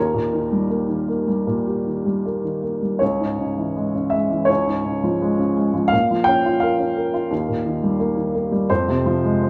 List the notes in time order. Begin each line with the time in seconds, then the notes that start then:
Already playing: D#2 A#4
0.14 A#2
0.33 D#3
0.52 G3
0.70 A#3
0.89 D#3
1.08 A#3
1.27 G3
1.47 A#2
1.67 G4
1.86 D#3
2.06 G3
2.26 A#3
2.44 D#3
2.63 A#3
2.82 G3
2.99 C#2 C#5
3.20 G#2
3.39 C#3
3.57 E3
3.76 G#3
3.95 C#3
4.10 G#3 E5
4.31 E3
4.45 C#5
4.50 C#2
4.67 G#2
4.85 C#3
5.03 F3
5.22 G#3
5.39 C#3
5.57 G#3
5.74 F3
5.88 F5
5.92 A#2
6.11 F3
6.24 C#4 G5
6.46 F4
6.60 A#4 F5
6.79 C#4
6.96 A#4
7.14 F4
7.31 D#2
7.49 A#2
7.66 D#3
7.83 G3
8.00 A#3
8.17 D#3
8.35 A#3
8.52 G3
8.70 F2 C5
8.88 C3
9.06 F3
9.25 G#3
9.43 C4